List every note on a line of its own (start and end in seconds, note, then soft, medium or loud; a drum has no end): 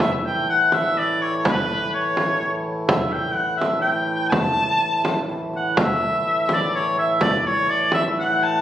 0.00 5.77 A2 medium
0.00 5.77 E3 medium
0.00 0.12 E5 medium
0.26 0.48 G5 medium
0.50 0.76 F#5 loud
0.72 0.99 E5 medium
0.72 frame drum medium
0.97 1.23 D5 medium
0.97 frame drum soft
1.22 1.37 C#5 medium
1.37 1.48 C#5 medium
1.45 1.93 B4 medium
1.45 frame drum medium
1.94 2.61 C#5 medium
2.17 frame drum medium
2.42 frame drum soft
2.88 3.14 E5 medium
2.88 frame drum medium
3.12 3.35 G5 medium
3.34 3.57 F#5 medium
3.57 3.81 E5 medium
3.62 frame drum medium
3.81 4.28 G5 medium
3.81 frame drum soft
4.30 5.23 A5 loud
4.30 frame drum medium
4.56 frame drum soft
5.05 frame drum medium
5.29 frame drum soft
5.53 5.82 F#5 medium
5.53 frame drum soft
5.77 8.62 A2 medium
5.77 8.62 E3 medium
5.77 6.51 E5 medium
5.77 frame drum medium
6.01 frame drum soft
6.49 6.73 D5 medium
6.49 frame drum medium
6.75 6.97 C#5 medium
6.97 7.20 E5 medium
6.97 frame drum soft
7.21 7.39 D5 medium
7.21 frame drum medium
7.39 7.48 D5 medium
7.45 7.71 C#5 medium
7.45 frame drum soft
7.69 7.93 D5 medium
7.92 8.05 E5 medium
7.92 frame drum medium
8.19 8.45 F#5 medium
8.41 8.62 A5 medium
8.41 frame drum soft